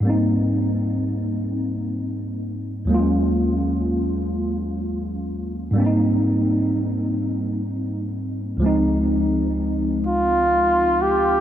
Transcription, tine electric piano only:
\new Staff \with { instrumentName = "Tine electric piano" } { \time 6/8 \key aes \major \tempo 4. = 42 <aes, g bes c' ees'>2. | <ees, ges aes bes des' f'>2. | <aes, g bes c' d' ees'>2. | <des, f aes c' ees'>2. | }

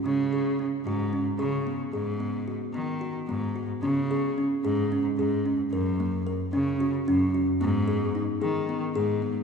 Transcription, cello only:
\new Staff \with { instrumentName = "Cello" } { \clef bass \time 7/8 \key cis \dorian \tempo 4 = 111 cis4. gis,4 cis4 | gis,4. dis4 gis,4 | cis4. gis,4 gis,4 | fis,4. cis4 fis,4 |
gis,4. dis4 gis,4 | }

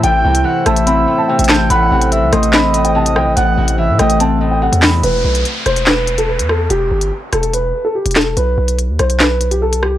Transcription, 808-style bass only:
\new Staff \with { instrumentName = "808-style bass" } { \clef bass \time 4/4 \key e \minor \tempo 4 = 144 a,,8 c,8 r8 a,,4 r8. a,,8. | a,,8 a,,8. c,16 a,,2 b,,16 a,,16 | a,,8 a,,8. a,16 a,,4.~ a,,16 e,8. | e,,8 b,,8 r8 e,,4.~ e,,16 e,8. |
e,,8 g,,8 r8 e,,4 r8. e,,8. | b,,8 b,,8. dis,16 b,,2 c,16 b,,16 | }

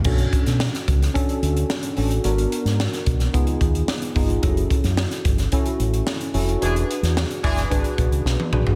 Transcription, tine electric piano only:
\new Staff \with { instrumentName = "Tine electric piano" } { \time 4/4 \key b \minor \tempo 4 = 110 <cis' d' fis' a'>4. r8 <cis' d' fis' a'>4 r8 <cis' d' fis' a'>8 | <b d' fis' ais'>4. r8 <b dis' eis' gis'>4 r8 <b dis' eis' gis'>8 | <cis' e' fis' a'>4. r8 <cis' e' fis' a'>4 r8 <cis' e' fis' a'>8 | <d' fis' gis' b'>4. r8 <d' fis' gis' b'>4 r8 <d' fis' gis' b'>8 | }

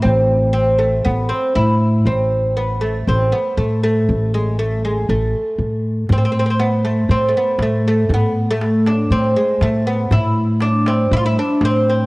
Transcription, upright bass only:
\new Staff \with { instrumentName = "Upright bass" } { \clef bass \time 4/4 \tempo 4 = 119 a,,2 a,,8 r8 a,4 | a,,2 a,,8 r8 a,4 | a,,2 a,,8 r8 a,4 | a,2 a,8 r8 a,4 |
a,2 a,8 r8 a,4 | a,2 a,8 r8 a,4 | }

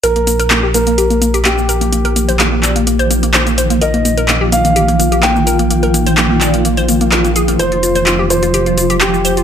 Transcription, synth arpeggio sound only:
\new Staff \with { instrumentName = "Synth arpeggio sound" } { \time 4/4 \key f \dorian \tempo 4 = 127 bes'16 bes16 bes16 bes'16 bes16 g'16 bes16 bes16 g'16 bes16 bes16 g'16 bes16 bes16 bes'16 bes16 | bes16 bes'16 bes16 c''16 bes16 bes16 d''16 bes16 bes16 c''16 bes16 bes16 c''16 bes16 c''16 bes16 | bes'16 bes16 bes16 bes'16 bes16 g'16 bes16 bes16 g'16 bes16 bes16 g'16 bes16 bes16 bes'16 bes16 | bes16 bes'16 bes16 c''16 bes16 bes16 d''16 bes16 bes16 c''16 bes16 bes16 bes'16 bes16 aes'16 bes16 |
c''16 f'16 f'16 c''16 f'16 g'16 f'16 f'16 g'16 f'16 f'16 g'16 f'16 f'16 c''16 f'16 | }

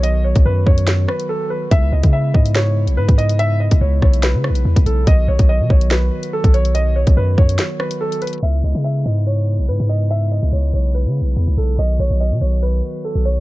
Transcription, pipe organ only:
\new Staff \with { instrumentName = "Pipe organ" } { \clef bass \time 4/4 \key cis \minor \tempo 4 = 143 << { <dis fis fis'>1 | <cis gis e'>1~ | <cis gis e'>1 | <dis fis fis'>1~ |
<dis fis fis'>1 | <cis gis e'>1~ | <cis gis e'>1 | <dis fis fis'>1 | } \\ { b1~ | b1~ | b1 | b1~ |
b1 | b1~ | b1 | b1 | } >> }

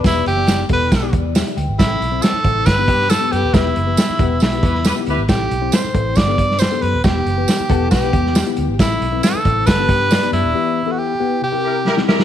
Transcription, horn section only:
\new Staff \with { instrumentName = "Horn section" } { \time 4/4 \key e \minor \tempo 4 = 137 r1 | r1 | r2 r8 <e' g' b'>16 r16 <e' g' b'>16 r16 <e' g' b'>8 | r1 |
r1 | r1 | r2 r8 <e' g' bes'>16 r16 <e' g' bes'>16 r16 <e' g' bes'>8 | }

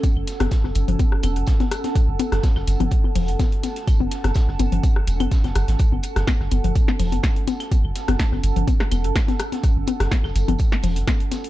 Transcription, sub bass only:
\new Staff \with { instrumentName = "Sub bass" } { \clef bass \time 4/4 \key fis \minor \tempo 4 = 125 r16 fis,,16 r16 fis,,16 r16 fis,,16 fis,,16 fis,,16 r8 e,,16 fis,,16 r4 | r16 fis,,16 r16 fis,,16 r16 fis,,16 fis,,16 fis,,16 r8 e,,16 fis,,16 r4 | r16 fis,,16 r16 fis,,16 r16 fis,,16 fis,,16 fis,,16 r8 e,,16 fis,,16 r16 fis,,16 fis,,16 gis,,16 | r16 fis,,16 r16 fis,,16 r16 fis,,16 fis,,16 fis,,16 r8 e,,16 fis,,16 r4 |
r16 fis,,16 r16 fis,,16 r16 fis,,16 fis,,16 fis,,16 r8 e,,16 fis,,16 r4 | r16 fis,,16 r16 fis,,16 r16 fis,,16 fis,,16 fis,,16 r8 e,,16 fis,,16 r4 | }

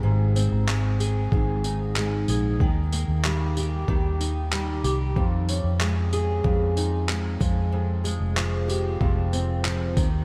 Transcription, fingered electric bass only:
\new Staff \with { instrumentName = "Fingered electric bass" } { \clef bass \time 4/4 \key f \minor \tempo 4 = 94 aes,,8. aes,,4~ aes,,16 aes,,4. bes,,8 | ees,8. ees,4~ ees,16 ees,4. c,8 | f,8. f,4~ f,16 f,4. f,8~ | f,8. f,,4~ f,,16 f,,4. ees,8 | }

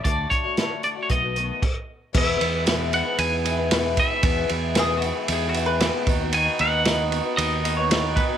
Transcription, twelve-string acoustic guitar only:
\new Staff \with { instrumentName = "Twelve-string acoustic guitar" } { \time 4/4 \key b \dorian \tempo 4 = 115 <d a d' fis'>8. <a d' fis'>16 <d a d' fis'>8 <d a d' fis'>16 <a d' fis'>16 <b, dis a b fis'>16 <a b fis'>16 <dis a b fis'>8 r4 | \key e \major <e, b, e gis b e'>8 <e gis b e'>8 <e, b, e gis b e'>8 <e gis b e'>16 <e gis b e'>8. <e gis b e'>16 <e gis b e'>16 <e, b, e gis b e'>8 <e gis b e'>16 <e gis b e'>16 | <e, b, e gis b e'>8 <e gis b e'>8 <e, b, e gis b e'>8 <e gis b e'>16 <e gis b e'>8. <e gis b e'>16 <e gis b e'>16 <e, b, e gis b e'>8 <dis b dis' fis'>16 <b dis' fis'>16 | <dis b dis' fis'>8 <dis b dis' fis'>8 <dis b dis' fis'>8 <dis b dis' fis'>16 <b dis' fis'>8. <dis b dis' fis'>16 <b dis' fis'>16 <dis b dis' fis'>8 <dis b dis' fis'>16 <b dis' fis'>16 | }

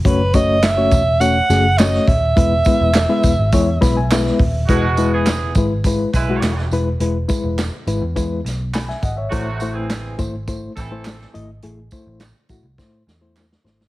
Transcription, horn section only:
\new Staff \with { instrumentName = "Horn section" } { \time 4/4 \key e \major \tempo 4 = 104 r1 | r1 | <b, gis fis'>8. <e b gis'>8. r4 <gis e' b'>4 r8 | r1 |
<c a fis'>8. <e c' gis'>8. r4 <e c' a'>4 r8 | r1 | }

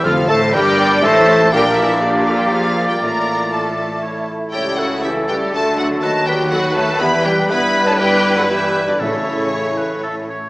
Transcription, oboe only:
\new Staff \with { instrumentName = "Oboe" } { \time 3/4 \key d \minor \tempo 4 = 120 f''8 a''8 g''4 a''4 | d''2.~ | d''2 cis''8 r8 | \key a \mixolydian a'2. |
b'2. | b'4 b'4 b'4 | a'4 cis''8 b'8 a'8 cis''8 | }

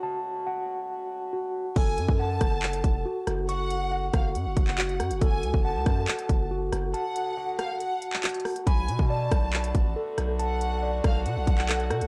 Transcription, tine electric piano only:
\new Staff \with { instrumentName = "Tine electric piano" } { \time 4/4 \key fis \minor \tempo 4 = 139 <fis' fis'' a''>4 fis''2 fis'4 | a'4 fis''2 fis'4 | cis'''4 fis''2 fis'4 | a'4 fis''2 fis'4 |
a''4 fis''2 fis'4 | b''4 d''2 a'4 | a''4 d''2 a'4 | }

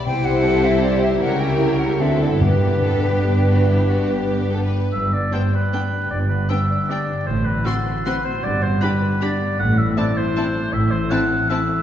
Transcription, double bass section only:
\new Staff \with { instrumentName = "Double bass section" } { \clef bass \time 3/4 \key g \major \tempo 4 = 152 c,2. | cis,2 d,4 | g,,2.~ | g,,2~ g,,8 r8 |
g,,4 r2 | g,,4 r2 | a,,4 r2 | g,,4 r2 |
a,,4 r2 | a,,4 r2 | }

